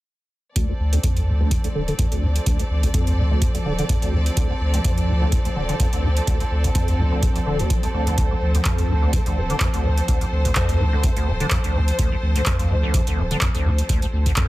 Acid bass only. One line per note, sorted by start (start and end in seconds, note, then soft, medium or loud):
0.56 0.67 D2 medium
0.69 0.73 D2 medium
0.93 0.99 D2 medium
1.04 1.29 F2 medium
1.27 1.32 A2 medium
1.40 1.53 D2 medium
1.51 1.58 F2 loud
1.64 1.68 D2 medium
1.75 1.82 D3 medium
1.88 1.94 D3 medium
1.99 2.06 F2 medium
2.12 2.24 D2 medium
2.23 2.27 A2 medium
2.46 2.57 D2 medium
2.60 2.63 D2 medium
2.83 2.89 D2 medium
2.94 3.19 F2 medium
3.18 3.22 A2 medium
3.31 3.43 D2 medium
3.42 3.49 F2 medium
3.55 3.58 D2 medium
3.66 3.73 D3 medium
3.79 3.85 D3 medium
3.89 3.96 F2 medium
4.02 4.15 D2 medium
4.13 4.17 A2 medium
4.37 4.48 D2 medium
4.50 4.54 D2 medium
4.74 4.80 D2 medium
4.85 5.10 F2 medium
5.08 5.13 A2 medium
5.21 5.34 D2 medium
5.32 5.39 F2 loud
5.45 5.49 D2 medium
5.56 5.63 D3 medium
5.69 5.75 D3 medium
5.80 5.87 F2 medium
5.93 6.05 D2 medium
6.04 6.08 A2 medium
6.27 6.38 D2 medium
6.40 6.44 D2 medium
6.64 6.70 D2 medium
6.75 7.00 F2 medium
6.99 7.03 A2 medium
7.12 7.24 D2 medium
7.23 7.30 F2 medium
7.36 7.39 D2 medium
7.46 7.61 D3 medium
7.59 7.72 D2 medium
7.70 7.81 F3 medium
7.83 7.87 C2 medium
7.94 8.05 D2 medium
8.07 8.16 D2 medium
8.18 8.29 D2 medium
8.31 8.34 D2 medium
8.55 8.61 D2 medium
8.65 8.91 F2 medium
8.89 8.94 A2 medium
9.02 9.15 D2 medium
9.13 9.20 F2 medium
9.26 9.38 D2 medium
9.37 9.41 F2 medium
9.50 9.56 D3 medium
9.61 9.68 F2 medium
9.74 9.86 D2 medium
9.85 9.89 A2 medium
10.08 10.19 D2 medium
10.21 10.25 D2 medium
10.45 10.51 D2 medium
10.56 10.81 F2 medium
10.80 10.84 A2 medium
10.93 11.05 D2 medium
11.04 11.11 F2 loud
11.17 11.29 D2 medium
11.27 11.32 F2 medium
11.40 11.46 D3 medium
11.51 11.58 F2 medium
11.64 11.77 D2 medium
11.75 11.79 A2 medium
11.99 12.10 D2 medium
12.12 12.15 D2 medium
12.36 12.42 D2 medium
12.46 12.72 F2 medium
12.70 12.75 A2 medium
12.83 12.96 D2 medium
12.94 13.01 F2 loud
13.07 13.19 D2 medium
13.18 13.22 F2 medium
13.31 13.37 D3 medium
13.42 13.49 F2 medium
13.55 13.67 D2 medium
13.65 13.70 A2 medium
13.89 14.00 D2 medium
14.02 14.06 D2 medium
14.26 14.32 D2 medium
14.37 14.48 F2 medium